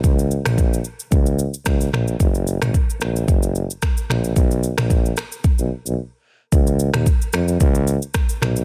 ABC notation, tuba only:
X:1
M:4/4
L:1/16
Q:"Swing 16ths" 1/4=111
K:Dbmix
V:1 name="Tuba" clef=bass
D,,3 B,,,3 z2 D,,3 z D,,2 B,,,2 | G,,,3 A,,, z2 B,,,2 G,,,3 z3 B,,,2 | C,,3 B,,,3 z3 C,, z C,, z4 | D,,3 E,, z2 F,,2 D,,3 z3 C,,2 |]